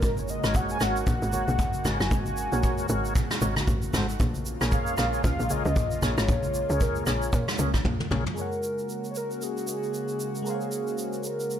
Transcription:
Already playing: analog synth pad C#3 G#3
0.02 log drum bass G#1, analog synth pad A#3 F#4, soft synth lead A#4, kick, shaker
0.17 soft synth lead C#5, high conga, shaker
0.28 soft synth lead D#5, shaker
0.43 log drum bass G#1, tonewheel organ F#4 A#4 C#5, cross-stick, shaker
0.54 soft synth lead F#5, kick, shaker
0.69 soft synth lead G#5, shaker
0.80 log drum bass G#1, tonewheel organ F#4 A#4 C#5, soft synth lead F#5, cross-stick, shaker
0.96 shaker
1.07 log drum bass A#1, kick, shaker
1.22 log drum bass G#1, shaker
1.33 tonewheel organ F#4 A#4 C#5, high conga, shaker
1.48 log drum bass A#1, high conga, shaker
1.59 log drum bass G#1, kick, low conga, shaker
1.74 high conga, shaker
1.85 log drum bass G#1, tonewheel organ F#4 A#4 C#5, soft synth lead G#5, cross-stick, high conga, low conga, shaker
2.00 log drum bass F#1, cross-stick, shaker
2.11 log drum bass G#1, kick, shaker
2.26 high conga, shaker
2.37 shaker
2.52 log drum bass A#1, tonewheel organ F#4 A#4 C#5, shaker
2.63 kick, shaker
2.78 shaker
2.89 log drum bass G#1, tonewheel organ F#4 A#4 C#5, shaker
3.05 shaker
3.15 kick, shaker
3.31 cross-stick, snare, shaker
3.41 log drum bass G#1, tonewheel organ F#4 A#4 C#5, high conga, shaker
3.56 cross-stick, high conga, shaker
3.68 log drum bass A1, analog synth pad D#3 A3 C4, kick, low conga, shaker
3.82 high conga, shaker
3.93 log drum bass G#1, tonewheel organ F#4 A4 C5, cross-stick, snare, high conga, low conga, shaker
4.09 shaker
4.20 log drum bass A#1, analog synth pad C#3 G#3 A#3 F4, kick, shaker
4.34 high conga, shaker
4.46 shaker
4.61 log drum bass A#1, tonewheel organ G#4 A#4 C#5, cross-stick, shaker
4.72 soft synth lead F5, kick, shaker
4.87 shaker
4.97 log drum bass A#1, tonewheel organ G#4 A#4 C#5, cross-stick, shaker
5.14 shaker
5.24 log drum bass C#2, soft synth lead F5, kick, shaker
5.39 log drum bass A#1, shaker
5.50 tonewheel organ G#4 A#4 C#5, soft synth lead D#5, high conga, shaker
5.65 log drum bass C#2, high conga, shaker
5.76 log drum bass A#1, kick, low conga, shaker
5.91 high conga, shaker
6.02 log drum bass A#1, tonewheel organ G#4 A#4 C#5, soft synth lead C#5, cross-stick, high conga, low conga, shaker
6.18 log drum bass G#1, cross-stick, shaker
6.29 log drum bass A#1, kick, low conga, shaker
6.43 high conga, shaker
6.54 shaker
6.69 log drum bass C#2, tonewheel organ G#4 A#4 C#5, shaker
6.81 soft synth lead A#4, kick, shaker
6.96 shaker
7.06 log drum bass A#1, tonewheel organ G#4 A#4 C#5, soft synth lead C#5, cross-stick, shaker
7.22 shaker
7.33 log drum bass A#2, kick, shaker
7.48 cross-stick, snare, shaker
7.59 log drum bass C#2, tonewheel organ G#4 A#4 C#5, high conga, shaker
7.74 kick, cross-stick, high conga, shaker
7.85 log drum bass A#1, kick, high tom, low conga
8.00 mid tom, high conga
8.11 log drum bass A#1, tonewheel organ G#4 A#4 C#5, mid tom, high conga, low conga
8.26 floor tom
8.34 analog synth pad C#3 G#3 A#3 F#4, fm electric piano G#3 G#4 A#4, shaker
8.39 soft synth lead A#4, fm electric piano C#5 F#5
8.52 shaker
8.63 shaker
8.79 shaker
8.89 shaker
9.04 shaker
9.11 soft synth lead C#5, shaker
9.17 soft synth lead A#4
9.31 shaker
9.42 soft synth lead G#4, shaker
9.57 shaker
9.67 shaker
9.83 shaker
9.94 shaker
10.08 shaker
10.20 shaker
10.35 shaker
10.42 fm electric piano G#3 G#4 A#4, shaker
10.47 soft synth lead G#4, fm electric piano C5 F5
10.54 fm electric piano C#5
10.61 shaker
10.72 shaker
10.87 shaker
10.98 shaker
11.13 shaker
11.24 soft synth lead A#4, shaker
11.40 shaker
11.50 shaker

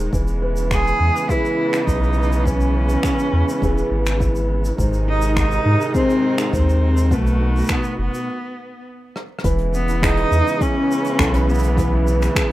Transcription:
Already playing: nylon-string guitar G#2 D#4 G#4 C5, string quartet G#3
0.11 sub bass E1, string quartet C#3 E3 B3, nylon-string guitar E3, kick, shaker
0.28 shaker
0.42 nylon-string guitar B4
0.57 shaker
0.71 cello G#4, finger snap, kick, shaker
0.87 shaker
1.00 sub bass E2
1.16 shaker
1.29 nylon-string guitar E4 G#4 B4, cello E4, kick, shaker
1.45 shaker
1.73 finger snap, shaker
1.87 sub bass B1, cello D#4, kick, shaker
2.03 shaker
2.13 shaker
2.23 shaker
2.33 shaker
2.45 nylon-string guitar E3, cello C#4, kick, shaker
2.61 shaker
2.75 nylon-string guitar B4
2.89 shaker
3.03 finger snap, kick, shaker
3.19 shaker
3.33 sub bass E2
3.49 shaker
3.62 sub bass E1, nylon-string guitar E4 G#4 B4, kick, shaker
3.78 shaker
3.91 sub bass G#1
4.06 finger snap, shaker
4.20 nylon-string guitar E4, kick, shaker
4.36 shaker
4.65 shaker
4.78 sub bass G#1, nylon-string guitar G#2, string quartet C3 D#3 G#3 D#4, kick, shaker
4.93 shaker
5.08 nylon-string guitar D#4, cello D#4
5.22 shaker
5.37 cello D#4, finger snap, kick, shaker
5.52 shaker
5.66 sub bass G#2
5.81 shaker
5.94 nylon-string guitar C4 D#4 G#4, cello C4, kick, shaker
6.10 shaker
6.38 finger snap, shaker
6.53 sub bass D#2, nylon-string guitar C4, cello C4, kick, shaker
6.69 shaker
6.97 shaker
7.11 sub bass B1, nylon-string guitar B2, string quartet A3 B3 F#4, cello A3, kick, shaker
7.27 shaker
7.41 nylon-string guitar D#4
7.56 shaker
7.58 shaker
7.61 shaker
7.64 shaker
7.66 shaker
7.68 finger snap, kick, shaker
7.70 cello B3, shaker
7.84 shaker
7.99 sub bass F#1, cello B3
8.14 shaker
9.16 cross-stick
9.39 cross-stick
9.44 sub bass E1, string quartet C#3 E3 G#3 B3, nylon-string guitar E3 B4, kick, closed hi-hat, shaker
9.59 closed hi-hat
9.74 cello B3, shaker
9.88 closed hi-hat, shaker
10.02 cello D#4, nylon-string guitar G#4, finger snap, kick, closed hi-hat, shaker
10.17 closed hi-hat
10.31 sub bass E2, shaker
10.47 closed hi-hat, shaker
10.61 nylon-string guitar C#4, cello C#4, kick, closed hi-hat, shaker
10.92 shaker
11.05 closed hi-hat, shaker
11.19 sub bass B1, nylon-string guitar A4, finger snap, kick, closed hi-hat, shaker
11.34 nylon-string guitar B4, closed hi-hat
11.49 cello B3, shaker
11.54 shaker
11.59 shaker
11.63 closed hi-hat, shaker
11.77 nylon-string guitar E3 B4, kick, closed hi-hat, shaker
12.07 shaker
12.22 finger snap, closed hi-hat, shaker
12.36 nylon-string guitar G#4, finger snap, kick, closed hi-hat, shaker

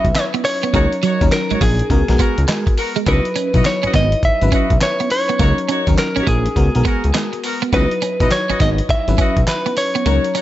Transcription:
Already playing: fm electric piano F#3 C#4 D#4 E4 B4, clean electric guitar E5
0.05 analog synth bass B1, kick, closed hi-hat
0.15 clean electric guitar C#5, snare, clap, closed hi-hat, tambourine
0.34 clean electric guitar B3, closed hi-hat
0.45 clean electric guitar C#5, muted clean electric guitar stroke, open hi-hat, tambourine
0.63 clean electric guitar B3, closed hi-hat
0.73 analog synth bass C#2, fm electric piano F#3 C#4 D#4 A#4, clean electric guitar A#3, horn section D#4 F#4 C#5, kick, closed hi-hat, tambourine
0.92 closed hi-hat
1.03 clean electric guitar F#3, horn section D#4 F#4 C#5, closed hi-hat, tambourine
1.21 analog synth bass D#2, fm electric piano F#3 C#4 D#4 A#4, muted clean electric guitar stroke, kick, closed hi-hat
1.32 clean electric guitar A#4, muted clean electric guitar stroke, snare, clap, closed hi-hat, tambourine
1.50 analog synth bass A#1, clean electric guitar G#3, horn section D#4 F#4 C#5, closed hi-hat
1.61 analog synth bass A#1, clean electric guitar A#3 G#4, kick, open hi-hat, tambourine
1.79 closed hi-hat
1.90 analog synth bass C#2, fm electric piano G#3 B3 F#4 A#4, kick, closed hi-hat
2.08 analog synth bass B1, fm electric piano G#3 B3 F#4 A#4, snare, closed hi-hat
2.19 horn section B3 F#4 A#4, clean electric guitar B3, kick, closed hi-hat, tambourine
2.38 analog synth bass C#2, closed hi-hat
2.48 clean electric guitar G#3, snare, clap, closed hi-hat, tambourine
2.67 muted clean electric guitar stroke, kick, closed hi-hat
2.77 horn section B3 F#4 A#4, open hi-hat, tambourine
2.96 clean electric guitar G#3, closed hi-hat
3.06 analog synth bass C#2, fm electric piano F#3 D#4 E4 B4, clean electric guitar B3 B4, horn section E4 F#4 B4 D#5, kick, closed hi-hat, tambourine
3.25 closed hi-hat
3.36 clean electric guitar C#4, closed hi-hat, tambourine
3.54 analog synth bass B1, fm electric piano F#3 D#4 E4 B4, horn section E4 F#4 B4 D#5, muted clean electric guitar stroke, kick, closed hi-hat
3.65 clean electric guitar C#5, muted clean electric guitar stroke, snare, clap, closed hi-hat, tambourine
3.83 analog synth bass G#1, clean electric guitar C#4, horn section E4 F#4 B4 D#5, closed hi-hat
3.94 analog synth bass G#1, clean electric guitar B3 D#5, kick, snare, closed hi-hat, tambourine
4.12 closed hi-hat
4.23 analog synth bass G#1, clean electric guitar E5, kick, closed hi-hat
4.41 analog synth bass G#1, fm electric piano F#3 C#4 E4 B4, closed hi-hat
4.52 clean electric guitar C#4, horn section E4 F#4 B4 D#5, kick, closed hi-hat, tambourine
4.70 analog synth bass B1, kick, closed hi-hat
4.81 clean electric guitar C#5, snare, clap, closed hi-hat, tambourine
5.00 clean electric guitar B3, closed hi-hat
5.10 clean electric guitar C#5, muted clean electric guitar stroke, open hi-hat, tambourine
5.29 clean electric guitar B3, closed hi-hat
5.39 analog synth bass C#2, fm electric piano F#3 C#4 D#4 A#4, clean electric guitar A#3, horn section D#4 F#4 C#5, kick, closed hi-hat, tambourine
5.58 closed hi-hat
5.68 clean electric guitar C#4, horn section D#4 F#4 C#5, closed hi-hat, tambourine
5.87 analog synth bass D#2, fm electric piano F#3 C#4 D#4 A#4, muted clean electric guitar stroke, kick, closed hi-hat
5.98 clean electric guitar A#4, muted clean electric guitar stroke, snare, clap, closed hi-hat, tambourine
6.16 analog synth bass A#1, clean electric guitar C#4, horn section D#4 F#4 C#5, closed hi-hat
6.23 clean electric guitar A#3 G4, kick, closed hi-hat
6.27 analog synth bass A#1, clean electric guitar G#4, tambourine
6.46 closed hi-hat
6.56 analog synth bass C#2, fm electric piano G#3 B3 F#4 A#4, kick, closed hi-hat
6.75 analog synth bass B1, fm electric piano G#3 B3 F#4 A#4, closed hi-hat
6.85 clean electric guitar B3, horn section B3 F#4 A#4, kick, closed hi-hat, tambourine
7.04 analog synth bass C#2, closed hi-hat
7.14 clean electric guitar G#3, snare, clap, closed hi-hat, tambourine
7.33 muted clean electric guitar stroke, closed hi-hat
7.43 horn section B3 F#4 A#4, open hi-hat, tambourine
7.62 clean electric guitar B3, closed hi-hat
7.72 analog synth bass C#2, fm electric piano F#3 D#4 E4 B4, clean electric guitar B3 B4, horn section E4 F#4 B4 D#5, kick, closed hi-hat, tambourine
7.91 closed hi-hat
8.02 clean electric guitar C#4, closed hi-hat, tambourine
8.20 analog synth bass B1, fm electric piano F#3 D#4 E4 B4, horn section E4 F#4 B4 D#5, muted clean electric guitar stroke, kick, closed hi-hat
8.31 clean electric guitar C#5, muted clean electric guitar stroke, snare, clap, closed hi-hat, tambourine
8.49 analog synth bass G#1, clean electric guitar C#4, horn section E4 F#4 B4 D#5, closed hi-hat
8.60 analog synth bass G#1, clean electric guitar B3 D#5, kick, snare, closed hi-hat, tambourine
8.78 closed hi-hat
8.89 analog synth bass G#1, clean electric guitar E5, kick, closed hi-hat
9.08 analog synth bass G#1, fm electric piano F#3 C#4 E4 B4, closed hi-hat
9.18 clean electric guitar C#4, horn section E4 F#4 B4 D#5, kick, closed hi-hat, tambourine
9.37 analog synth bass B1, kick, closed hi-hat
9.47 clean electric guitar B4, snare, clap, closed hi-hat, tambourine
9.66 clean electric guitar B3, closed hi-hat
9.77 clean electric guitar C#5, muted clean electric guitar stroke, open hi-hat, tambourine
9.95 clean electric guitar B3, closed hi-hat
10.05 analog synth bass C#2, fm electric piano F#3 C#4 D#4 A#4, clean electric guitar A#3, horn section D#4 F#4 C#5, closed hi-hat, tambourine
10.24 closed hi-hat
10.34 clean electric guitar C#4, horn section D#4 F#4 C#5, closed hi-hat, tambourine

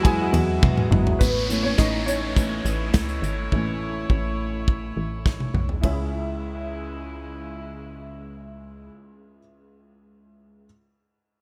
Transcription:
Already playing: analog synth bass E2, grand piano F#3 G#3 D#4 E4 F#4 D#5 E5 F#5, string section F#3 G#3 E4
0.03 steel-string acoustic guitar E3 G#3 B3 F#4, grand piano G#4 G#5, kick, ride
0.33 analog synth bass E2, floor tom, ride
0.62 steel-string acoustic guitar E2 B2 E3 G#3 B3 F#4, kick, high tom
0.78 mid tom
0.91 analog synth bass G#1, steel-string acoustic guitar E3 G#3 B3 F#4, grand piano F#3 G#3 E4, mid tom
1.07 floor tom
1.19 analog synth bass A1, string section A3 E4 C#5, grand piano B3 B4, kick, closed hi-hat, downlifter
1.49 grand piano E3 A3 C#4, closed hi-hat
1.63 grand piano C#4 C#5
1.78 analog synth bass A1, grand piano D#4 D#5, kick, snare, closed hi-hat
2.06 grand piano C#4 C#5, closed hi-hat
2.36 grand piano E3 A3 C#4, kick, closed hi-hat
2.65 analog synth bass A1, closed hi-hat
2.94 analog synth bass C#2, kick, snare, closed hi-hat
3.09 closed hi-hat
3.22 analog synth bass G#1, closed hi-hat
3.52 analog synth bass A1, grand piano E3 A3 C#4, kick
4.10 analog synth bass A1, kick
4.68 kick
4.96 analog synth bass A1
5.26 kick, snare
5.40 high tom
5.54 analog synth bass B1, mid tom
5.69 floor tom
5.81 grand piano C#2 E4 G#4 C#5, analog synth bass C#2, string section C#3 G#3 E4, kick, ride
5.85 grand piano E5

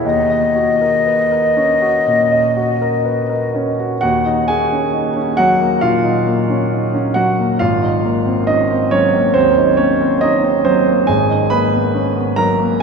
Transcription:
0.04 grand piano D#2, flute D#5
0.30 grand piano D#5
0.56 grand piano F#4
0.81 grand piano A#4
1.06 grand piano B4
1.32 grand piano A#4
1.57 grand piano C#4
1.82 grand piano F#4
2.07 grand piano A#2
2.32 grand piano D#5
2.57 grand piano F#4
2.82 grand piano A#4
3.06 grand piano B4
3.30 grand piano A#4
3.55 grand piano C#4
3.80 grand piano F#4
4.01 grand piano D#2 F#4 F#5
4.25 grand piano D#4
4.48 grand piano A#3 G#4 G#5
4.72 grand piano C#4
4.94 grand piano D#4
5.16 grand piano C#4
5.37 grand piano F#3 F#4 F#5
5.60 grand piano A#3
5.81 grand piano A#2 F4 F5
6.04 grand piano D#4
6.27 grand piano A#3
6.50 grand piano C#4
6.72 grand piano D#4
6.94 grand piano C#4
7.14 grand piano F#3 F#4 F#5
7.39 grand piano A#3
7.59 grand piano G#1 F4 F5
7.82 grand piano D#4
8.04 grand piano A#3
8.26 grand piano C4
8.47 grand piano C#4 D#4 D#5
8.71 grand piano C4
8.91 grand piano F#3 C#4 C#5
9.14 grand piano A#3
9.34 grand piano D#2 C4 C5
9.57 grand piano D#4
9.77 grand piano A#3 C#4 C#5
10.01 grand piano C4
10.21 grand piano C#4 D#4 D#5
10.44 grand piano C4
10.65 grand piano F#3 C4 C5
10.87 grand piano A#3
11.07 grand piano G#1 G#4 G#5
11.30 grand piano D#4
11.50 grand piano A#3 B4 B5
11.73 grand piano B3
11.94 grand piano C#4
12.16 grand piano B3
12.36 grand piano F#3 A#4 A#5
12.59 grand piano A#3

